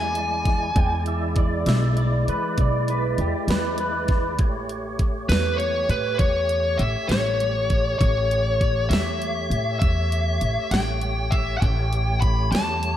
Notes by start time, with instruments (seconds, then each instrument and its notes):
Already playing: upright bass E2, tonewheel organ G#3 E4 D5, lead electric guitar G#5
0.15 closed hi-hat
0.45 kick, snare, closed hi-hat
0.75 upright bass E2, tonewheel organ G#3 E4 D5, clean electric guitar G5, kick, closed hi-hat
1.06 clean electric guitar E5, closed hi-hat
1.36 clean electric guitar D5, kick, closed hi-hat
1.66 upright bass B1, clean electric guitar E5, snare, closed hi-hat
1.97 clean electric guitar D5, closed hi-hat
2.27 upright bass E3, clean electric guitar B4, closed hi-hat
2.58 upright bass B1, clean electric guitar D5, kick, closed hi-hat
2.88 clean electric guitar B4, closed hi-hat
3.18 upright bass E2, clean electric guitar G4, closed hi-hat
3.48 upright bass E2, clean electric guitar B4, snare, closed hi-hat
3.78 clean electric guitar B4, closed hi-hat
4.08 kick, snare, closed hi-hat
4.39 upright bass A1, tonewheel organ A3 G4 C#5, kick, closed hi-hat
4.69 closed hi-hat
4.99 kick, closed hi-hat
5.29 upright bass E2, lead electric guitar B4, snare, closed hi-hat
5.58 lead electric guitar C#5, closed hi-hat
5.89 upright bass A2, lead electric guitar B4, closed hi-hat
6.19 upright bass E2, lead electric guitar C#5, kick, closed hi-hat
6.49 closed hi-hat
6.78 upright bass A1, lead electric guitar E5, closed hi-hat
7.08 upright bass A1, lead electric guitar C#5, snare, closed hi-hat
7.40 closed hi-hat
7.70 kick, closed hi-hat
7.99 upright bass A1, tonewheel organ A3 G4 C#5, lead electric guitar C#5, kick, closed hi-hat
8.31 closed hi-hat
8.61 kick, closed hi-hat
8.89 upright bass E2, lead electric guitar E5, closed hi-hat
8.93 snare
9.22 closed hi-hat
9.50 upright bass A2, closed hi-hat
9.79 upright bass E2, lead electric guitar E5, kick, closed hi-hat
10.12 closed hi-hat
10.41 upright bass A1, closed hi-hat
10.71 upright bass A1, lead electric guitar G5, snare, closed hi-hat
11.01 closed hi-hat
11.31 lead electric guitar E5, kick, closed hi-hat
11.58 tonewheel organ A3 G4 C#5, lead electric guitar F#5 G5
11.62 upright bass A1, kick, closed hi-hat
11.93 closed hi-hat
12.21 lead electric guitar B5, kick, closed hi-hat
12.52 upright bass E2, lead electric guitar A5, snare, closed hi-hat
12.83 closed hi-hat